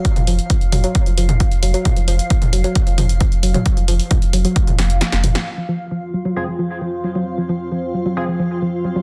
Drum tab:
HH |xxoxxxoxxxoxxxox|xxoxxxoxxxoxxxox|xxooxxoxxxoxxxox|----------------|
SD |----------------|----------------|----------o-oo-o|----------------|
T2 |-o----o----o----|o----o----o----o|----o----o----o-|----------------|
BD |o---o---o---o---|o---o---o---o---|o---o---o-------|----------------|

HH |----------------|
SD |----------------|
T2 |----------------|
BD |----------------|